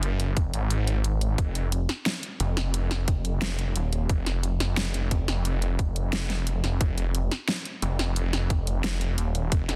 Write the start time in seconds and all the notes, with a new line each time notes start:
Already playing: F#1
0.03 closed hi-hat
0.20 closed hi-hat
0.37 F1, kick, closed hi-hat
0.54 G#1, closed hi-hat
0.70 closed hi-hat
0.87 closed hi-hat
1.04 closed hi-hat
1.21 closed hi-hat
1.38 F1, kick, closed hi-hat
1.55 closed hi-hat
1.72 closed hi-hat
1.89 snare, closed hi-hat
2.06 snare, closed hi-hat
2.23 closed hi-hat
2.40 F1, closed hi-hat
2.57 snare, closed hi-hat
2.74 closed hi-hat
2.91 snare, closed hi-hat
3.08 kick, closed hi-hat
3.25 closed hi-hat
3.42 snare, closed hi-hat
3.59 closed hi-hat
3.76 D#1, closed hi-hat
3.93 closed hi-hat
4.09 F1, kick, closed hi-hat
4.26 snare, closed hi-hat
4.43 closed hi-hat
4.60 F1, snare, closed hi-hat
4.77 snare, closed hi-hat
4.94 F1, closed hi-hat
5.11 kick, closed hi-hat
5.28 F1, snare, closed hi-hat
5.45 closed hi-hat
5.62 closed hi-hat
5.79 kick, closed hi-hat
5.96 closed hi-hat
6.13 snare, closed hi-hat
6.30 snare, closed hi-hat
6.47 closed hi-hat
6.64 F1, snare, closed hi-hat
6.81 F1, kick, closed hi-hat
6.98 closed hi-hat
7.15 closed hi-hat
7.31 snare, closed hi-hat
7.48 snare, closed hi-hat
7.65 closed hi-hat
7.82 F1, closed hi-hat
7.99 snare, closed hi-hat
8.16 closed hi-hat
8.33 snare, closed hi-hat
8.50 kick, closed hi-hat
8.67 closed hi-hat
8.84 snare, closed hi-hat
9.01 closed hi-hat
9.18 D#1, closed hi-hat
9.35 closed hi-hat
9.52 F1, kick, closed hi-hat
9.69 snare, closed hi-hat